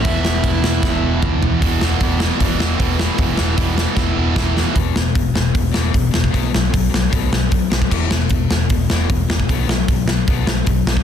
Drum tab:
CC |x---x-----------|----------------|----------------|----------------|
HH |----------------|o---o---o---o---|o---o-----------|o---o---o---o---|
SD |--o---o-o-------|--o---o---o---o-|--o---o-o---o-o-|--o---o---o---o-|
T2 |------------o---|----------------|----------------|----------------|
FT |--------------o-|----------------|----------------|----------------|
BD |o---o---o---o---|o---o---o---o---|o---o---o---o---|o---o---o---o--o|

CC |----------------|x---------------|----------------|
HH |o---o---o---o---|----o---o---o---|o---o---o---o---|
SD |--o---o---o---o-|--o---o---o---o-|--o---o---o---o-|
T2 |----------------|----------------|----------------|
FT |----------------|----------------|----------------|
BD |o---o---o---o--o|o---o---o---o--o|o---o---o---o--o|